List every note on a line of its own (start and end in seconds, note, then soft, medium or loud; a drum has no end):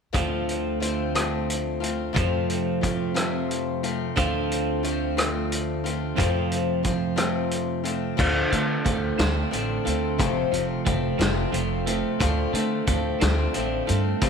0.13 2.12 D2 medium
0.13 0.81 D3 medium
0.13 0.80 F3 medium
0.13 0.80 A3 medium
0.13 0.82 C4 medium
0.13 0.82 F4 medium
0.13 kick medium
0.13 closed hi-hat medium
0.49 closed hi-hat medium
0.80 1.14 F3 medium
0.80 1.14 A3 soft
0.80 1.14 C4 medium
0.80 1.14 F4 medium
0.80 closed hi-hat medium
1.15 1.83 D3 soft
1.15 2.14 F3 soft
1.15 1.81 A3 medium
1.15 1.81 C4 medium
1.15 1.80 F4 medium
1.15 cross-stick medium
1.15 closed hi-hat medium
1.50 closed hi-hat medium
1.80 2.13 A3 soft
1.80 2.14 C4 soft
1.80 2.13 F4 soft
1.80 closed hi-hat medium
2.13 2.81 F2 medium
2.13 4.13 F2 medium
2.13 2.82 C3 medium
2.13 2.81 F3 medium
2.13 2.81 A3 medium
2.13 2.82 C4 medium
2.13 2.82 F4 medium
2.13 kick loud
2.13 closed hi-hat medium
2.50 closed hi-hat soft
2.81 3.14 F3 soft
2.81 3.14 A3 medium
2.81 3.14 C4 medium
2.81 3.13 F4 medium
2.81 kick medium
2.81 closed hi-hat medium
3.14 3.83 F2 medium
3.14 3.83 C3 medium
3.14 3.84 F3 medium
3.14 3.84 A3 medium
3.14 3.83 C4 medium
3.14 3.83 F4 medium
3.14 cross-stick medium
3.14 closed hi-hat medium
3.51 closed hi-hat medium
3.83 4.15 F3 soft
3.83 4.15 A3 soft
3.83 4.15 C4 soft
3.83 4.15 F4 medium
3.83 closed hi-hat medium
4.16 6.14 D2 medium
4.16 4.83 D3 medium
4.16 4.83 F3 medium
4.16 4.83 A3 medium
4.16 4.84 C4 medium
4.16 4.84 F4 medium
4.16 kick medium
4.16 closed hi-hat medium
4.51 closed hi-hat soft
4.83 5.17 F3 soft
4.83 5.16 A3 medium
4.83 5.16 C4 medium
4.83 5.16 F4 medium
4.83 closed hi-hat medium
5.17 5.85 D3 soft
5.17 6.17 F3 medium
5.17 5.85 A3 medium
5.17 5.85 C4 medium
5.17 5.83 F4 medium
5.17 cross-stick medium
5.17 closed hi-hat medium
5.52 closed hi-hat medium
5.84 6.16 A3 soft
5.84 6.16 C4 soft
5.84 6.16 F4 medium
5.84 closed hi-hat soft
6.16 6.84 F2 medium
6.16 8.15 F2 medium
6.16 6.85 C3 medium
6.16 6.82 F3 medium
6.16 6.82 A3 medium
6.16 6.83 C4 medium
6.16 6.84 F4 medium
6.16 kick medium
6.16 closed hi-hat medium
6.52 closed hi-hat medium
6.83 7.16 F3 soft
6.83 7.15 A3 soft
6.83 7.16 C4 medium
6.83 7.15 F4 medium
6.83 kick medium
6.83 closed hi-hat medium
7.16 7.85 F2 soft
7.16 7.85 C3 soft
7.16 7.84 F3 soft
7.16 7.83 A3 medium
7.16 7.83 C4 medium
7.16 7.82 F4 medium
7.16 cross-stick medium
7.16 closed hi-hat medium
7.51 closed hi-hat medium
7.84 8.16 F3 soft
7.84 8.17 A3 soft
7.84 8.16 C4 soft
7.84 8.17 F4 medium
7.84 closed hi-hat medium
8.17 8.43 D2 medium
8.17 8.52 D3 medium
8.17 8.52 F3 medium
8.17 8.51 A3 medium
8.17 8.51 C4 medium
8.17 8.49 F4 medium
8.17 kick medium
8.17 crash medium
8.51 8.76 D3 medium
8.51 8.84 A3 soft
8.51 8.85 C4 soft
8.51 8.85 F4 medium
8.51 closed hi-hat medium
8.84 9.09 D2 medium
8.84 9.18 F3 medium
8.84 9.18 A3 medium
8.84 9.18 C4 medium
8.84 9.17 F4 medium
8.84 kick medium
8.84 closed hi-hat medium
9.18 9.43 D2 medium
9.18 9.53 D3 medium
9.18 9.50 F3 medium
9.18 9.51 A3 medium
9.18 9.51 C4 medium
9.18 9.52 F4 medium
9.18 snare medium
9.18 closed hi-hat medium
9.51 9.77 A1 medium
9.51 10.19 D3 medium
9.51 9.86 F3 medium
9.51 9.86 A3 soft
9.51 9.85 C4 medium
9.51 9.84 F4 medium
9.51 closed hi-hat medium
9.85 10.20 D2 medium
9.85 10.18 A3 soft
9.85 10.18 C4 soft
9.85 10.19 F4 medium
9.85 closed hi-hat medium
10.18 10.43 F1 medium
10.18 10.53 F2 medium
10.18 10.53 C3 medium
10.18 10.52 F3 medium
10.18 10.53 A3 medium
10.18 10.52 C4 medium
10.18 10.51 F4 medium
10.18 kick loud
10.18 closed hi-hat medium
10.52 10.76 F1 medium
10.52 12.20 C3 medium
10.52 10.84 F3 soft
10.52 10.85 A3 soft
10.52 10.86 C4 medium
10.52 10.86 F4 medium
10.52 closed hi-hat medium
10.86 11.10 F1 medium
10.86 11.18 F3 soft
10.86 11.18 A3 medium
10.86 11.18 C4 medium
10.86 11.17 F4 medium
10.86 kick medium
10.86 closed hi-hat medium
11.19 11.43 F1 medium
11.19 11.54 F2 medium
11.19 11.54 C3 medium
11.19 11.51 F3 medium
11.19 11.51 A3 medium
11.19 11.53 C4 medium
11.19 11.53 F4 medium
11.19 snare medium
11.19 closed hi-hat medium
11.52 12.00 F1 medium
11.52 11.87 F3 soft
11.52 11.87 A3 medium
11.52 11.86 C4 medium
11.52 11.86 F4 medium
11.52 closed hi-hat medium
11.87 12.19 F3 soft
11.87 12.19 A3 soft
11.87 12.20 C4 soft
11.87 12.20 F4 medium
11.87 closed hi-hat medium
12.20 12.44 D2 medium
12.20 12.54 D3 medium
12.20 12.54 F3 medium
12.20 12.54 A3 medium
12.20 12.53 C4 medium
12.20 12.53 F4 medium
12.20 kick medium
12.20 closed hi-hat medium
12.53 12.77 D3 medium
12.53 12.86 A3 soft
12.53 12.87 C4 soft
12.53 12.88 F4 medium
12.53 closed hi-hat medium
12.87 13.11 D2 medium
12.87 13.21 F3 medium
12.87 13.20 A3 medium
12.87 13.20 C4 medium
12.87 13.20 F4 medium
12.87 kick medium
12.87 closed hi-hat medium
13.21 13.46 D2 medium
13.21 13.56 D3 medium
13.21 13.53 F3 medium
13.21 13.53 A3 medium
13.21 13.54 C4 medium
13.21 13.55 F4 medium
13.21 snare medium
13.21 closed hi-hat medium
13.54 13.79 A1 medium
13.54 14.22 D3 medium
13.54 13.88 F3 medium
13.54 13.88 A3 medium
13.54 13.87 C4 medium
13.54 13.86 F4 medium
13.54 closed hi-hat medium
13.87 14.13 G2 medium
13.87 14.21 A3 soft
13.87 14.21 C4 medium
13.87 14.21 F4 medium
13.87 closed hi-hat medium
14.21 14.29 F1 medium
14.21 14.29 F2 medium
14.21 14.29 C3 medium
14.21 14.29 F3 medium
14.21 14.29 A3 medium
14.21 14.29 C4 medium
14.21 14.29 F4 medium
14.21 kick loud
14.21 closed hi-hat medium